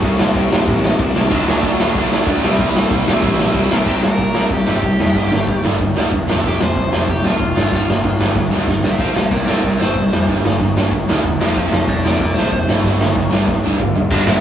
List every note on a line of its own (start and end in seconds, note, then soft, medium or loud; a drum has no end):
0.02 0.15 C2 medium
0.02 0.34 C3 medium
0.02 0.35 G3 medium
0.02 0.35 C4 loud
0.02 kick loud
0.02 ride medium
0.19 0.32 C2 loud
0.19 snare loud
0.35 0.47 C2 medium
0.35 0.52 C3 medium
0.35 0.51 G3 medium
0.35 0.51 C4 medium
0.35 kick loud
0.35 ride medium
0.52 0.64 C2 medium
0.52 0.66 C3 medium
0.52 0.67 G3 medium
0.52 0.67 C4 loud
0.52 snare loud
0.67 0.91 A1 loud
0.67 0.98 C3 loud
0.67 0.99 G3 loud
0.67 0.99 C4 loud
0.67 kick loud
0.67 ride medium
0.84 snare loud
0.99 1.11 C2 loud
0.99 1.15 C3 medium
0.99 1.14 G3 medium
0.99 1.14 C4 loud
0.99 kick loud
0.99 ride medium
1.15 1.28 C2 medium
1.15 1.30 C3 medium
1.15 1.30 G3 medium
1.15 1.30 C4 medium
1.15 snare loud
1.30 1.43 D2 loud
1.30 1.62 D3 loud
1.30 1.63 F#3 loud
1.30 1.63 A3 loud
1.30 1.63 D4 loud
1.30 kick loud
1.30 crash loud
1.47 1.59 D2 loud
1.47 snare loud
1.63 1.75 D2 loud
1.63 1.79 D3 medium
1.63 1.78 F#3 loud
1.63 1.79 A3 loud
1.63 1.78 D4 loud
1.63 kick loud
1.63 ride medium
1.79 1.91 D2 medium
1.79 1.95 D3 medium
1.79 1.94 F#3 medium
1.79 1.95 A3 loud
1.79 1.96 D4 loud
1.79 snare loud
1.95 2.19 C2 loud
1.95 2.27 D3 loud
1.95 2.25 F#3 loud
1.95 2.27 A3 medium
1.95 2.28 D4 loud
1.95 kick loud
1.95 ride medium
2.12 snare loud
2.26 2.39 D2 loud
2.26 2.43 D3 medium
2.26 2.41 F#3 medium
2.26 2.43 A3 medium
2.26 2.43 D4 medium
2.26 kick loud
2.26 ride medium
2.42 2.55 C2 medium
2.42 2.59 C3 medium
2.42 2.59 G3 medium
2.42 2.58 C4 medium
2.42 2.57 E4 loud
2.42 snare loud
2.59 2.71 C2 medium
2.59 2.91 C3 medium
2.59 2.90 G3 loud
2.59 2.90 C4 medium
2.59 2.89 E4 loud
2.59 kick loud
2.59 ride medium
2.76 2.87 C2 medium
2.76 snare loud
2.90 3.03 C2 medium
2.90 3.06 C3 medium
2.90 3.07 G3 medium
2.90 3.07 C4 loud
2.90 3.07 E4 medium
2.90 kick loud
2.90 ride medium
3.07 3.19 C2 loud
3.07 3.22 C3 medium
3.07 3.21 G3 loud
3.07 3.21 C4 medium
3.07 3.22 E4 medium
3.07 snare loud
3.22 3.47 A1 loud
3.22 3.54 C3 medium
3.22 3.53 G3 loud
3.22 3.53 C4 loud
3.22 3.53 E4 loud
3.22 kick loud
3.22 ride loud
3.39 snare loud
3.54 3.66 C2 loud
3.54 3.69 C3 medium
3.54 3.69 G3 medium
3.54 3.70 C4 medium
3.54 3.70 E4 loud
3.54 kick loud
3.54 ride medium
3.70 3.83 C2 medium
3.70 3.85 C3 medium
3.70 3.86 G3 medium
3.70 3.86 C4 medium
3.70 3.86 E4 medium
3.70 snare loud
3.86 4.01 C2 medium
3.86 4.01 C3 medium
3.86 4.02 G3 medium
3.86 4.02 C4 medium
3.86 4.03 G4 medium
3.86 kick loud
3.86 crash loud
4.02 4.18 C2 medium
4.02 4.17 C3 medium
4.02 4.17 G3 medium
4.02 4.50 A#4 loud
4.02 snare loud
4.18 4.33 C2 medium
4.18 4.34 C3 medium
4.18 4.34 G3 medium
4.18 kick medium
4.18 open hi-hat medium
4.35 4.49 C2 medium
4.35 4.50 C3 loud
4.35 4.50 G3 loud
4.35 4.51 C4 loud
4.35 snare loud
4.50 4.65 C2 medium
4.50 4.65 C3 medium
4.50 4.66 G3 medium
4.50 4.68 G4 medium
4.50 kick loud
4.50 open hi-hat medium
4.66 4.81 G1 medium
4.66 4.82 C3 medium
4.66 4.82 G3 medium
4.66 4.82 C4 loud
4.66 5.62 G4 medium
4.66 snare loud
4.83 4.97 C2 medium
4.83 4.98 C3 medium
4.83 4.98 G3 medium
4.83 kick loud
4.83 open hi-hat medium
4.99 5.15 F1 medium
4.99 5.14 C3 medium
4.99 5.14 G3 medium
4.99 snare loud
5.14 5.29 G1 medium
5.14 5.30 G2 medium
5.14 5.31 D3 medium
5.14 5.31 G3 loud
5.14 kick loud
5.14 open hi-hat medium
5.31 5.46 G1 medium
5.31 5.46 G2 medium
5.31 5.46 D3 medium
5.31 snare loud
5.47 5.62 G1 medium
5.47 5.62 G2 medium
5.47 5.62 D3 medium
5.47 kick loud
5.47 open hi-hat medium
5.64 5.78 G1 medium
5.64 5.78 G2 medium
5.64 5.79 D3 medium
5.64 5.79 G3 medium
5.64 snare medium
5.79 5.94 G1 medium
5.79 5.94 G2 medium
5.79 5.94 D3 medium
5.79 kick loud
5.79 open hi-hat medium
5.95 6.10 D2 medium
5.95 6.10 G2 medium
5.95 6.10 D3 loud
5.95 6.11 G3 medium
5.95 snare loud
6.12 6.26 E1 medium
6.12 6.26 G2 medium
6.12 6.26 D3 medium
6.12 kick loud
6.12 open hi-hat medium
6.28 6.43 F1 medium
6.28 6.43 F2 medium
6.28 6.43 C3 medium
6.28 6.43 F3 medium
6.28 snare loud
6.44 6.58 F1 medium
6.44 6.59 F2 medium
6.44 6.59 C3 medium
6.44 6.59 F3 medium
6.44 kick loud
6.44 open hi-hat medium
6.48 6.61 G4 loud
6.60 6.74 F1 medium
6.60 6.74 F2 medium
6.60 6.74 C3 medium
6.60 7.07 C5 loud
6.60 snare loud
6.75 6.90 F1 medium
6.75 6.90 F2 medium
6.75 6.90 C3 medium
6.75 kick loud
6.75 open hi-hat medium
6.92 7.06 F1 medium
6.92 7.07 F2 medium
6.92 7.07 C3 loud
6.92 7.07 F3 loud
6.92 snare loud
7.07 7.22 F1 medium
7.07 7.22 F2 medium
7.07 7.22 C3 medium
7.07 7.26 G4 medium
7.07 kick loud
7.07 open hi-hat medium
7.24 7.39 C2 medium
7.24 7.38 F2 loud
7.24 7.39 C3 medium
7.24 7.39 F3 loud
7.24 8.18 F4 medium
7.24 snare loud
7.39 7.54 F1 medium
7.39 7.54 F2 medium
7.39 7.54 C3 medium
7.39 kick loud
7.39 open hi-hat medium
7.55 7.70 G1 medium
7.55 7.70 G2 medium
7.55 7.71 D3 medium
7.55 7.71 G3 medium
7.55 snare loud
7.72 7.86 G1 medium
7.72 7.86 G2 loud
7.72 7.87 D3 medium
7.72 7.88 G3 loud
7.72 kick loud
7.72 open hi-hat medium
7.88 8.02 G1 medium
7.88 8.02 G2 medium
7.88 8.02 D3 medium
7.88 snare loud
8.03 8.18 G1 medium
8.03 8.17 G2 medium
8.03 8.18 D3 medium
8.03 kick loud
8.03 open hi-hat medium
8.19 8.34 G1 medium
8.19 8.33 G2 medium
8.19 8.33 D3 loud
8.19 8.35 G3 loud
8.19 snare loud
8.34 8.50 G1 medium
8.34 8.49 G2 medium
8.34 8.50 D3 medium
8.34 kick loud
8.34 snare medium
8.50 8.67 D2 medium
8.50 8.66 G2 medium
8.50 8.66 D3 medium
8.50 8.67 G3 medium
8.50 snare medium
8.67 8.82 G1 loud
8.67 8.81 G2 medium
8.67 8.82 D3 medium
8.67 kick loud
8.67 snare medium
8.82 8.99 C2 medium
8.82 8.98 G2 medium
8.82 8.98 D3 medium
8.82 8.99 D5 medium
8.82 8.98 F5 medium
8.82 snare medium
8.98 9.14 C2 medium
8.98 9.13 C3 medium
8.98 9.14 G3 medium
8.98 9.15 C4 medium
8.98 9.14 C5 medium
8.98 9.14 F5 medium
8.98 kick loud
8.98 open hi-hat medium
9.14 9.31 C2 medium
9.14 9.29 C3 medium
9.14 9.30 G3 medium
9.14 9.30 C5 medium
9.14 9.31 F5 medium
9.14 snare loud
9.31 9.46 C2 medium
9.31 9.46 C3 medium
9.31 9.46 G3 medium
9.31 9.46 A#4 medium
9.31 9.46 D5 medium
9.31 kick loud
9.31 open hi-hat medium
9.47 9.63 C2 medium
9.47 9.62 C3 medium
9.47 9.62 G3 medium
9.47 9.63 C4 loud
9.47 9.62 A#4 medium
9.47 9.63 D5 medium
9.47 snare loud
9.63 9.78 C2 loud
9.63 9.78 C3 medium
9.63 9.78 G3 medium
9.63 9.79 A#4 medium
9.63 9.80 D5 medium
9.63 kick loud
9.63 open hi-hat medium
9.80 9.95 G1 medium
9.80 9.94 C3 medium
9.80 9.95 G3 loud
9.80 9.95 C4 medium
9.80 10.27 C5 medium
9.80 snare loud
9.95 10.10 C2 loud
9.95 10.10 C3 medium
9.95 10.10 G3 medium
9.95 kick loud
9.95 open hi-hat medium
10.12 10.27 F2 medium
10.12 10.26 C3 medium
10.12 10.27 G3 medium
10.12 snare loud
10.27 10.42 G1 medium
10.27 10.43 G2 medium
10.27 10.43 D3 loud
10.27 10.44 G3 medium
10.27 kick loud
10.27 open hi-hat medium
10.45 10.59 G1 medium
10.45 10.59 G2 medium
10.45 10.59 D3 medium
10.45 snare loud
10.59 10.74 G1 medium
10.59 10.75 G2 medium
10.59 10.75 D3 medium
10.59 kick loud
10.59 open hi-hat medium
10.75 10.90 G1 loud
10.75 10.91 G2 medium
10.75 10.91 D3 medium
10.75 10.92 G3 loud
10.75 snare loud
10.91 11.06 G1 medium
10.91 11.07 G2 medium
10.91 11.06 D3 medium
10.91 kick loud
10.91 open hi-hat medium
11.08 11.22 D2 medium
11.08 11.23 G2 medium
11.08 11.23 D3 medium
11.08 11.24 G3 loud
11.08 snare loud
11.24 11.38 E1 medium
11.24 11.38 G2 medium
11.24 11.38 D3 medium
11.24 kick loud
11.24 open hi-hat medium
11.40 11.54 F1 medium
11.40 11.54 F2 medium
11.40 11.55 C3 medium
11.40 11.55 F3 medium
11.40 11.56 C5 loud
11.40 11.56 F5 loud
11.40 snare loud
11.56 11.70 F1 loud
11.56 11.71 F2 medium
11.56 11.71 C3 medium
11.56 11.71 F3 medium
11.56 11.72 C5 medium
11.56 11.72 F5 loud
11.56 kick loud
11.56 open hi-hat medium
11.72 11.87 F1 medium
11.72 11.86 F2 medium
11.72 11.87 C3 medium
11.72 11.88 C5 medium
11.72 11.88 F5 medium
11.72 snare loud
11.88 12.02 F1 medium
11.88 12.02 F2 medium
11.88 12.03 C3 medium
11.88 12.02 A4 medium
11.88 12.03 D5 medium
11.88 kick loud
11.88 open hi-hat medium
12.03 12.19 F1 medium
12.03 12.18 F2 medium
12.03 12.19 C3 loud
12.03 12.20 F3 loud
12.03 12.18 A4 medium
12.03 12.19 D5 medium
12.03 snare loud
12.19 12.34 F1 medium
12.19 12.34 F2 medium
12.19 12.34 C3 medium
12.19 12.34 A4 medium
12.19 12.36 D5 medium
12.19 kick loud
12.19 open hi-hat medium
12.34 12.50 C2 medium
12.34 12.51 F2 medium
12.34 12.51 C3 medium
12.34 12.51 F3 loud
12.34 12.66 C5 loud
12.34 snare loud
12.52 12.66 F1 loud
12.52 12.66 F2 medium
12.52 12.66 C3 medium
12.52 kick loud
12.52 open hi-hat medium
12.67 12.83 G1 medium
12.67 12.82 G2 medium
12.67 12.82 D3 medium
12.67 12.83 G3 medium
12.67 snare loud
12.83 12.98 G1 medium
12.83 12.98 G2 medium
12.83 12.99 D3 medium
12.83 12.99 G3 medium
12.83 kick loud
12.83 open hi-hat medium
12.99 13.14 G1 medium
12.99 13.14 G2 medium
12.99 13.14 D3 medium
12.99 snare loud
13.15 13.30 G1 medium
13.15 13.30 G2 medium
13.15 13.30 D3 medium
13.15 kick loud
13.15 open hi-hat medium
13.31 13.46 G1 medium
13.31 13.46 G2 loud
13.31 13.46 D3 loud
13.31 13.47 G3 loud
13.31 snare loud
13.47 13.62 G1 loud
13.47 13.61 G2 medium
13.47 13.62 D3 medium
13.47 kick loud
13.47 snare medium
13.63 13.78 D2 loud
13.63 13.78 G2 medium
13.63 13.79 D3 loud
13.63 13.79 G3 loud
13.79 13.94 G1 medium
13.79 13.94 G2 medium
13.79 13.94 D3 loud
13.79 kick loud
13.79 mid tom loud
13.95 14.10 C2 loud
13.95 14.10 G2 medium
13.95 14.10 D3 medium
13.95 floor tom medium
14.10 14.22 G1 medium
14.10 14.40 G2 medium
14.10 14.40 D3 medium
14.10 14.40 G3 medium
14.10 14.40 B3 loud
14.10 14.40 D4 loud
14.10 kick loud
14.10 crash loud
14.10 crash medium
14.27 14.37 G1 loud
14.27 14.40 E4 medium
14.27 14.40 E5 loud
14.27 snare loud